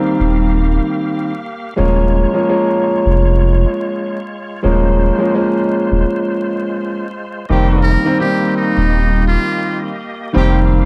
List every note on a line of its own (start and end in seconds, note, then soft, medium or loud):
0.00 1.29 D#3 medium
0.00 1.29 G3 medium
0.00 1.29 A#3 medium
0.00 1.74 A#3 medium
0.00 1.30 C4 loud
0.00 1.74 G4 medium
0.00 1.75 F5 medium
0.20 0.80 D#1 loud
1.76 2.25 D#1 loud
1.76 2.28 F3 medium
1.76 2.28 G#3 medium
1.76 7.46 G#3 medium
1.76 2.28 A#3 medium
1.76 2.29 C#4 loud
1.76 7.46 F4 medium
1.76 4.61 C#5 medium
2.33 2.47 F3 medium
2.33 2.47 G#3 medium
2.33 2.48 A#3 medium
2.33 2.48 C#4 loud
2.48 4.15 F3 medium
2.48 4.15 G#3 medium
2.48 4.15 A#3 medium
2.48 4.16 C#4 loud
3.06 3.66 F1 medium
4.62 5.11 D#1 loud
4.62 5.14 F3 medium
4.62 5.14 G#3 medium
4.62 5.15 A#3 medium
4.62 5.15 C#4 loud
4.62 7.47 C5 medium
5.18 5.32 F3 medium
5.18 5.33 G#3 medium
5.18 5.33 A#3 medium
5.18 5.34 C#4 medium
5.34 7.01 F3 medium
5.34 7.01 G#3 medium
5.34 7.01 A#3 medium
5.34 7.01 C#4 loud
5.92 6.04 D#1 medium
7.49 7.97 F1 loud
7.49 8.00 D#3 loud
7.49 7.97 D#3 loud
7.49 8.01 G3 medium
7.49 10.85 A#3 medium
7.49 8.01 A#3 medium
7.49 7.97 C4 loud
7.49 8.01 C4 loud
7.49 10.85 G4 medium
7.49 7.97 G4 loud
7.49 10.32 D#5 medium
7.83 8.16 A#4 medium
8.05 8.19 D#3 medium
8.05 8.19 G3 medium
8.05 8.20 A#3 medium
8.05 8.20 C4 loud
8.20 9.87 D#3 loud
8.20 9.87 G3 medium
8.20 9.87 A#3 medium
8.20 9.87 C4 loud
8.20 8.53 G4 medium
8.56 9.24 D#4 medium
8.77 9.37 D#1 medium
9.28 9.80 F4 medium
10.33 10.82 F1 loud
10.33 10.85 D#3 medium
10.33 10.58 D#3 medium
10.33 10.85 G3 medium
10.33 10.85 A#3 medium
10.33 10.85 C4 loud
10.33 10.58 C4 loud
10.33 10.58 G4 loud
10.33 10.85 F5 medium